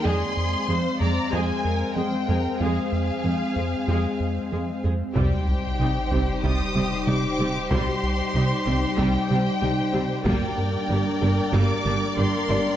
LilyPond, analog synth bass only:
\new Staff \with { instrumentName = "Analog synth bass" } { \clef bass \time 4/4 \key c \minor \tempo 4 = 94 f,8 f,8 f8 f,8 f,8 f,8 f8 f,8 | f,8 f,8 f8 f,8 f,8 f,8 f8 f,8 | c,8 c,8 c8 c,8 c,8 c8 c8 c8 | c,8 c,8 c8 c,8 c,8 c8 c8 c8 |
g,8 g,8 g8 g,8 g,8 g8 g8 g8 | }